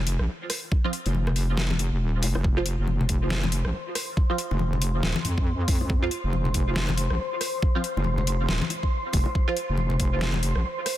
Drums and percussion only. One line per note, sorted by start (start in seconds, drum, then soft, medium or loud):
0.07 closed hi-hat medium
0.19 cross-stick medium
0.50 cross-stick medium
0.50 open hi-hat loud
0.72 kick loud
0.93 closed hi-hat medium
1.06 closed hi-hat soft
1.06 high bongo medium
1.15 high conga medium
1.27 cross-stick medium
1.27 low conga medium
1.36 open hi-hat medium
1.57 snare loud
1.71 high conga medium
1.79 closed hi-hat medium
1.79 high bongo medium
2.23 open hi-hat loud
2.23 high bongo medium
2.35 cross-stick medium
2.35 high bongo medium
2.44 kick loud
2.66 closed hi-hat medium
2.87 high conga medium
3.01 low conga medium
3.09 kick medium
3.09 closed hi-hat medium
3.30 snare loud
3.43 high bongo medium
3.43 high conga medium
3.52 closed hi-hat medium
3.65 cross-stick medium
3.95 cross-stick medium
3.95 open hi-hat loud
4.17 kick loud
4.38 closed hi-hat medium
4.51 high bongo medium
4.59 high conga medium
4.73 low conga medium
4.82 closed hi-hat medium
5.03 snare loud
5.16 high conga loud
5.25 closed hi-hat medium
5.25 high bongo soft
5.38 kick medium
5.68 kick loud
5.68 open hi-hat loud
5.68 high bongo medium
5.81 high bongo medium
5.90 kick loud
6.11 closed hi-hat medium
6.33 high conga medium
6.45 low conga medium
6.54 kick medium
6.54 closed hi-hat medium
6.76 snare loud
6.88 high bongo medium
6.88 high conga medium
6.98 closed hi-hat medium
7.10 cross-stick medium
7.41 cross-stick medium
7.41 open hi-hat medium
7.62 kick loud
7.84 closed hi-hat medium
7.97 high bongo medium
8.04 high conga medium
8.18 low conga medium
8.27 closed hi-hat medium
8.49 snare loud
8.62 high conga medium
8.70 closed hi-hat medium
8.70 high bongo medium
8.83 kick medium
9.13 kick loud
9.13 open hi-hat medium
9.13 high bongo soft
9.26 high bongo medium
9.35 kick loud
9.57 closed hi-hat medium
9.77 high conga medium
9.90 low conga medium
10.00 kick medium
10.00 closed hi-hat medium
10.21 snare loud
10.34 high bongo medium
10.34 high conga medium
10.43 closed hi-hat medium
10.56 cross-stick medium
10.86 cross-stick medium
10.86 open hi-hat loud